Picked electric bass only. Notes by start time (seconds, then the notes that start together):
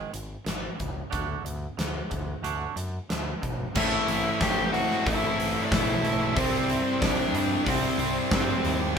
0.14 G#1
0.46 G#1
0.80 C#2
1.13 D2
1.44 D2
1.78 D2
2.12 D2
2.43 D2
2.76 F#2
3.10 D2
3.43 B1
3.76 A1
4.08 A1
4.41 A1
5.06 A1
5.38 A1
5.71 B1
6.36 C2
7.02 C2
7.33 G2
7.67 C2
7.98 C2
8.31 G2
8.64 D#2